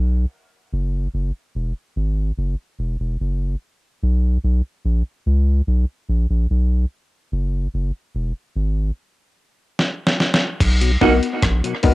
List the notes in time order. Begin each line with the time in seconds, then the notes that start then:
Already playing: B1
0.73 F#1
1.14 F#1
1.55 E1
1.96 G#1
2.38 F#1
2.79 E1
3.00 E1
3.20 F#1
4.03 B1
4.44 B1
4.85 A#1
5.26 C#2
5.67 B1
6.09 A#1
6.30 A#1
6.50 B1
7.32 F#1
7.74 F#1
8.15 E1
8.56 G#1
9.79 snare
10.07 snare
10.20 snare
10.34 snare
10.60 B1, kick, closed hi-hat, crash
10.81 B2 F#3, closed hi-hat
11.01 B1 A#3 B3 D#4 F#4 A#4, kick, open hi-hat
11.23 closed hi-hat
11.42 A#1, kick, cross-stick, closed hi-hat
11.64 B2 F#3, closed hi-hat
11.83 C#2 A#3 B3 D#4 F#4 A#4, kick, open hi-hat